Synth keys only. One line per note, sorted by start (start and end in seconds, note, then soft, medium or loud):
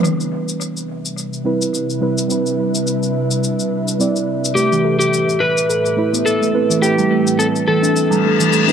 1.44 1.98 G3 medium
1.44 1.98 C4 medium
1.44 1.99 E4 medium
1.44 1.99 B4 medium
2.01 2.26 G3 medium
2.01 2.27 C4 medium
2.01 2.27 E4 medium
2.01 2.27 B4 medium
2.28 3.95 G3 medium
2.28 3.96 C4 medium
2.28 3.97 E4 medium
2.32 3.98 B4 medium
3.99 4.54 G3 medium
3.99 4.55 C4 medium
3.99 4.55 E4 medium
3.99 4.55 D5 medium
5.96 6.50 A3 medium
5.96 6.51 E4 medium
5.96 6.51 B4 medium
6.53 6.79 A3 medium
6.53 6.79 C4 medium
6.53 6.80 E4 medium
6.53 6.80 B4 medium
6.80 8.48 A3 medium
6.80 8.49 E4 medium
6.84 8.50 B4 medium
8.67 8.72 A3 medium
8.67 8.72 C4 medium
8.67 8.72 E4 medium
8.67 8.72 B4 medium